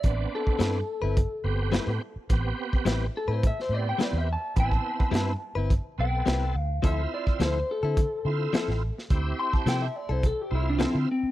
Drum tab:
HH |x---x---x---x---|x---x---x---x---|x---x---x---x---|x---x---x---x---|
SD |----o-------o---|----o----o--o---|----o-------o---|----o-------oo-o|
BD |o--o----o-------|o--o----o-------|oo-o----o-------|o--o----o-------|

HH |x---x---x---x---|
SD |----o-------o---|
BD |o--o----o-------|